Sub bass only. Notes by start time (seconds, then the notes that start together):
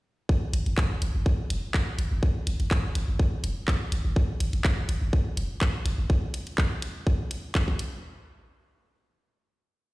0.53 G#1
0.66 G#1
0.90 G#1
1.02 G#1
1.15 G#1
1.50 F#1
1.98 G#1
2.11 G#1
2.47 G#1
2.60 G#1
2.84 G#1
2.95 G#1
3.08 G#1
3.44 F#1
3.92 G#1
4.05 G#1
4.40 G#1
4.53 G#1
4.77 G#1
4.89 G#1
5.02 G#1
5.37 F#1
5.85 G#1
5.98 G#1